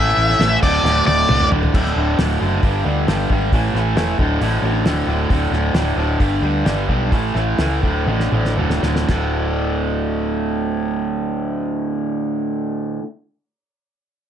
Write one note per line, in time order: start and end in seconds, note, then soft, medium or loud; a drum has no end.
0.00 0.13 A1 medium
0.00 0.39 A2 loud
0.00 0.40 E3 loud
0.00 0.40 A3 loud
0.00 0.58 E5 loud
0.08 snare soft
0.17 0.34 A1 medium
0.30 snare soft
0.39 0.56 A1 loud
0.39 0.61 A2 medium
0.39 0.61 E3 loud
0.39 0.62 A3 loud
0.39 snare loud
0.39 crash medium
0.62 0.79 D1 medium
0.62 0.83 D2 medium
0.62 0.83 A2 loud
0.62 0.84 D3 loud
0.62 1.05 D5 loud
0.62 kick loud
0.62 crash loud
0.83 1.00 D1 loud
0.83 1.28 D2 medium
0.83 1.28 A2 loud
0.83 1.28 D3 loud
0.83 snare medium
1.07 1.23 D1 medium
1.07 1.48 D5 medium
1.07 high tom medium
1.29 1.45 C2 loud
1.29 1.50 D2 medium
1.29 1.51 A2 medium
1.29 1.51 D3 medium
1.29 mid tom loud
1.40 mid tom medium
1.50 1.67 D1 medium
1.50 1.72 D2 medium
1.50 1.72 A2 medium
1.50 1.73 D3 medium
1.50 floor tom loud
1.63 floor tom medium
1.74 1.94 D1 medium
1.74 1.95 D2 medium
1.74 1.96 A2 medium
1.74 1.96 D3 loud
1.74 kick loud
1.74 crash medium
1.86 snare soft
1.96 2.16 D1 medium
1.96 2.18 D2 medium
1.96 2.18 A2 medium
1.96 2.18 D3 medium
2.19 2.38 D1 medium
2.19 2.39 D2 medium
2.19 2.40 A2 loud
2.19 2.40 D3 loud
2.19 snare loud
2.19 open hi-hat medium
2.41 2.61 F#1 medium
2.41 2.61 D2 medium
2.41 2.61 A2 medium
2.41 2.61 D3 medium
2.62 2.83 G1 medium
2.62 2.83 G2 medium
2.62 2.84 D3 medium
2.62 2.84 G3 loud
2.62 kick loud
2.62 open hi-hat soft
2.84 3.05 D2 medium
2.84 3.06 G2 medium
2.84 3.06 D3 medium
2.84 3.06 G3 medium
3.07 3.27 G1 medium
3.07 3.29 G2 medium
3.07 3.29 D3 medium
3.07 3.30 G3 loud
3.07 snare medium
3.07 open hi-hat soft
3.30 3.50 G#1 medium
3.30 3.50 G2 medium
3.30 3.50 D3 medium
3.30 3.51 G3 medium
3.30 kick medium
3.52 3.72 A1 medium
3.52 3.74 A2 medium
3.52 3.74 E3 medium
3.52 3.75 A3 medium
3.52 kick loud
3.52 open hi-hat soft
3.74 3.94 A1 medium
3.74 3.95 A2 medium
3.74 3.96 E3 medium
3.74 3.97 A3 medium
3.74 snare soft
3.95 4.16 E1 medium
3.95 4.17 A2 medium
3.95 4.17 E3 medium
3.95 4.19 A3 loud
3.95 snare loud
3.95 open hi-hat soft
4.19 4.39 D1 medium
4.19 4.40 D2 medium
4.19 4.41 A2 medium
4.19 4.41 D3 medium
4.19 kick medium
4.40 4.60 A1 medium
4.40 4.62 D2 medium
4.40 4.63 A2 medium
4.40 4.63 D3 medium
4.40 open hi-hat soft
4.62 4.82 A1 medium
4.62 4.85 D2 medium
4.62 4.85 A2 medium
4.62 4.86 D3 medium
4.85 5.05 D1 medium
4.85 5.07 D2 medium
4.85 5.08 A2 medium
4.85 5.08 D3 loud
4.85 snare loud
4.85 open hi-hat soft
5.07 5.27 D1 medium
5.07 5.28 D2 medium
5.07 5.29 A2 medium
5.07 5.29 D3 medium
5.30 5.50 D1 medium
5.30 5.51 D2 medium
5.30 5.52 A2 medium
5.30 5.52 D3 loud
5.30 kick loud
5.30 open hi-hat soft
5.51 5.72 D1 medium
5.51 5.74 D2 medium
5.51 5.74 A2 medium
5.51 5.75 D3 medium
5.51 snare soft
5.74 5.94 D1 medium
5.74 5.96 D2 medium
5.74 5.96 A2 medium
5.74 5.97 D3 medium
5.74 snare loud
5.74 open hi-hat soft
5.96 6.16 D1 medium
5.96 6.18 D2 medium
5.96 6.18 A2 medium
5.96 6.18 D3 medium
6.19 6.40 G1 medium
6.19 6.41 G2 medium
6.19 6.42 D3 medium
6.19 6.42 G3 medium
6.19 kick loud
6.19 open hi-hat soft
6.41 6.62 D2 medium
6.41 6.64 G2 medium
6.41 6.65 D3 medium
6.41 6.65 G3 medium
6.65 6.86 G1 medium
6.65 6.88 G2 medium
6.65 6.88 D3 medium
6.65 6.89 G3 medium
6.65 snare medium
6.65 open hi-hat soft
6.89 7.12 B1 medium
6.89 7.10 G2 medium
6.89 7.10 D3 medium
6.89 7.11 G3 medium
6.89 kick medium
7.12 7.33 A1 medium
7.12 7.33 A2 medium
7.12 7.34 E3 medium
7.12 7.35 A3 medium
7.12 kick loud
7.12 open hi-hat soft
7.35 7.56 A1 medium
7.35 7.58 A2 medium
7.35 7.58 E3 medium
7.35 7.58 A3 medium
7.35 snare soft
7.58 7.80 C#2 medium
7.58 7.81 A2 medium
7.58 7.81 E3 medium
7.58 7.81 A3 medium
7.58 snare loud
7.58 open hi-hat soft
7.82 8.05 D1 medium
7.82 8.06 D2 medium
7.82 8.06 A2 medium
7.82 8.07 D3 medium
7.82 kick medium
8.06 8.29 A1 medium
8.06 8.31 D2 medium
8.06 8.32 A2 medium
8.06 8.32 D3 medium
8.06 high tom medium
8.20 snare soft
8.32 8.55 A1 medium
8.32 8.57 D2 medium
8.32 8.57 A2 medium
8.32 8.58 D3 medium
8.32 mid tom medium
8.45 snare medium
8.57 8.80 D1 medium
8.57 8.81 D2 medium
8.57 8.82 A2 medium
8.57 8.82 D3 medium
8.57 mid tom medium
8.70 snare medium
8.82 9.06 D1 medium
8.82 9.07 D2 medium
8.82 9.07 A2 medium
8.82 9.07 D3 medium
8.82 snare medium
8.96 snare medium
9.08 12.96 D1 medium
9.08 12.99 D2 medium
9.08 13.01 A2 medium
9.08 kick medium
9.08 snare medium
9.08 crash medium
9.12 13.03 D3 medium